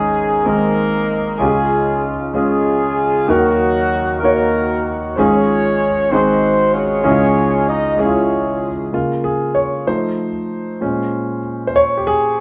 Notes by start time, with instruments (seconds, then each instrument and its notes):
Already playing: grand piano G#1 G#2 G#3 C#4 D#4 G#4, horn section G#3 C#4 D#4 G#4
0.43 grand piano G#1 G#2 G#3 C4 D#4, horn section D#3 A#3 D#4 A#4
0.48 grand piano G#4
1.38 grand piano C#2 C#3 G#3 C#4 F4 G4, horn section G#3 C#4 F4 G#4
1.48 grand piano G#4
2.33 horn section G#3 C#4 F4 G#4, grand piano G#3 C#4 F4 G#4
3.27 grand piano D#2 D#3 A#3 D#4 F#4 A#4, horn section F#3 A#3 D#4 F#4
4.21 horn section A#3 D#4 F#4 A#4, grand piano A#3 D#4 F#4
4.25 grand piano C#5
5.16 grand piano G#1 G#2 G#3 C#4 F4 G#4, horn section C#4 F4 G#4 C#5
6.10 grand piano G#1 G#2 C4 D#4 F#4, horn section C4 D#4 F#4 C5
6.14 grand piano G#4
6.72 horn section C#4 F4 G#4 C#5
7.04 grand piano C#2 C#3 G#3 C#4 E4 G#4
7.11 grand piano F4
7.69 horn section D#4 D#5
7.97 grand piano G#3 C#4 E4 G#4, horn section C#4 F4 G#4 C#5
8.05 grand piano F4
8.93 grand piano C#3 A#3 F4
9.24 grand piano G#4
9.55 grand piano C#5
9.86 grand piano F3 A3 D#4 C5
10.81 grand piano A#2 G#3 C#4
11.67 grand piano C5
11.76 grand piano C#5
11.97 grand piano G4
12.07 grand piano G#4